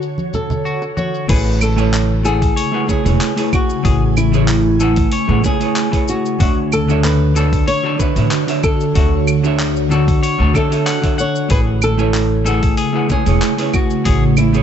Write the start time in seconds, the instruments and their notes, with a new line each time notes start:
Already playing: hollow-body jazz guitar D3 D4 E4 F#4 C#5, ambient pad D3 F#4 C#5
0.02 shaker
0.18 high conga, shaker
0.34 nylon-string guitar A4, high bongo, low conga, shaker
0.50 low conga, shaker
0.65 clean electric guitar F#4, shaker
0.82 high bongo, shaker
0.97 clean electric guitar F#4, nylon-string guitar C#5, high conga, shaker
1.14 shaker
1.28 upright bass A1, ambient pad C#3 A3 G#5, hollow-body jazz guitar A3 E4 G#4 B4 C#5, clean electric guitar G#4, nylon-string guitar B4, kick, open hi-hat, crash, shaker
1.61 nylon-string guitar A4, claves, shaker
1.76 hollow-body jazz guitar A3 E4 B4 C#5 G#5, shaker
1.94 clap, open hi-hat, shaker
2.23 hollow-body jazz guitar A3 E4 B4 F#5 G#5, nylon-string guitar G#4, clean electric guitar A4, shaker
2.42 kick, open hi-hat, shaker
2.56 clean electric guitar C#5, open hi-hat, shaker
2.71 hollow-body jazz guitar A3 E4 G#4 B4 F#5
2.87 hollow-body jazz guitar A3 E4 G#4 B4 C#5, nylon-string guitar G#4, kick, shaker
3.03 upright bass E1, hollow-body jazz guitar A3 E4 G#4 B4 C#5, open hi-hat, shaker
3.21 clap, open hi-hat, shaker
3.36 hollow-body jazz guitar A3 E4 G#4 B4 C#5, open hi-hat, shaker
3.53 nylon-string guitar F#4, kick, claves, shaker
3.70 shaker
3.83 upright bass A1, hollow-body jazz guitar A3 E4 G#4 B4 C#5, clean electric guitar G#4, kick, open hi-hat, shaker
4.17 nylon-string guitar E4, claves, shaker
4.32 hollow-body jazz guitar A3 E4 G#4 B4 C#5, shaker
4.48 clap, open hi-hat, shaker
4.79 hollow-body jazz guitar A3 E4 B4 F#5 G#5, clean electric guitar A4, shaker
4.96 kick, open hi-hat, shaker
5.12 clean electric guitar C#5, open hi-hat, shaker
5.28 upright bass A1, hollow-body jazz guitar A3 E4 G#4 B4 F#5
5.42 hollow-body jazz guitar A3 E4 G#4 B4 C#5, nylon-string guitar G#4, kick, shaker
5.60 hollow-body jazz guitar A3 E4 G#4 B4 C#5, open hi-hat, shaker
5.76 clap, open hi-hat, shaker
5.91 hollow-body jazz guitar A3 E4 G#4 B4 C#5, kick, open hi-hat, shaker
6.08 nylon-string guitar F#4, shaker
6.25 shaker
6.39 upright bass D2, hollow-body jazz guitar D3 D4 F#4 C#5 E5, ambient pad D3 F#4 C#5, clean electric guitar F#4, kick, open hi-hat, shaker
6.72 nylon-string guitar A4, claves, shaker
6.87 hollow-body jazz guitar D3 D4 F#4 C#5 E5, shaker
7.04 nylon-string guitar B4, clap, open hi-hat, shaker
7.34 hollow-body jazz guitar D3 D4 F#4 C#5 A5, clean electric guitar A4, shaker
7.53 kick, open hi-hat, shaker
7.67 clean electric guitar C#5, nylon-string guitar C#5, open hi-hat, shaker
7.83 hollow-body jazz guitar D3 D4 F#4 C#5 A5
7.98 hollow-body jazz guitar D3 D4 F#4 C#5 E5, nylon-string guitar B4, kick, shaker
8.15 upright bass A1, hollow-body jazz guitar D3 D4 F#4 C#5 E5, open hi-hat, shaker
8.31 clap, open hi-hat, shaker
8.46 hollow-body jazz guitar D3 D4 F#4 C#5 E5, open hi-hat, shaker
8.63 nylon-string guitar A4, kick, claves, shaker
8.80 shaker
8.94 upright bass D2, hollow-body jazz guitar D3 D4 F#4 C#5 E5, clean electric guitar F#4, kick, open hi-hat, shaker
9.27 claves, shaker
9.43 hollow-body jazz guitar D3 D4 F#4 C#5 E5, shaker
9.59 clap, open hi-hat, shaker
9.76 shaker
9.89 hollow-body jazz guitar D3 D4 F#4 C#5 A5, nylon-string guitar F#4, clean electric guitar A4, shaker
10.08 kick, open hi-hat, shaker
10.23 clean electric guitar C#5, open hi-hat, shaker
10.38 upright bass D2, hollow-body jazz guitar D3 D4 F#4 C#5 A5
10.53 hollow-body jazz guitar D3 D4 F#4 C#5 E5, clean electric guitar A4, nylon-string guitar A4, kick, claves, shaker
10.70 hollow-body jazz guitar D3 D4 F#4 C#5 E5, open hi-hat, shaker
10.86 clean electric guitar F#5, clap, open hi-hat, shaker
11.01 hollow-body jazz guitar D3 D4 F#4 C#5 E5, kick, open hi-hat, shaker
11.18 nylon-string guitar C#5, clean electric guitar F#5, shaker
11.36 shaker
11.48 upright bass A1, ambient pad C#3 A3 G#5, hollow-body jazz guitar A3 E4 G#4 B4 C#5, clean electric guitar G#4, nylon-string guitar B4, kick, open hi-hat, shaker
11.82 nylon-string guitar A4, claves, shaker
11.97 hollow-body jazz guitar A3 E4 B4 C#5 G#5, shaker
12.14 clap, open hi-hat, shaker
12.44 hollow-body jazz guitar A3 E4 B4 F#5 G#5, nylon-string guitar G#4, clean electric guitar A4, shaker
12.63 kick, open hi-hat, shaker
12.77 clean electric guitar G#4, open hi-hat, shaker
12.93 hollow-body jazz guitar A3 E4 G#4 B4 F#5
13.08 hollow-body jazz guitar A3 E4 G#4 B4 C#5, nylon-string guitar G#4, kick, shaker
13.25 upright bass E1, hollow-body jazz guitar A3 E4 G#4 B4 C#5, open hi-hat, shaker
13.42 clap, open hi-hat, shaker
13.57 hollow-body jazz guitar A3 E4 G#4 B4 C#5, open hi-hat, shaker
13.74 nylon-string guitar F#4, kick, claves, shaker
13.90 shaker
14.04 upright bass A1, hollow-body jazz guitar A3 E4 G#4 B4 C#5, clean electric guitar G#4, kick, open hi-hat, shaker
14.37 nylon-string guitar E4, claves, shaker
14.53 hollow-body jazz guitar A3 E4 G#4 B4 C#5, shaker